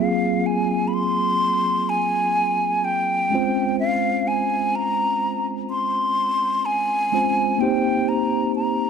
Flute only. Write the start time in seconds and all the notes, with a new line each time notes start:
0.00 F5
0.46 G#5
0.88 B5
0.94 C6
1.89 G#5
2.85 G5
3.80 F5
4.28 G#5
4.75 A#5
5.70 C6
6.66 G#5
7.61 G5
8.09 A#5
8.56 A#5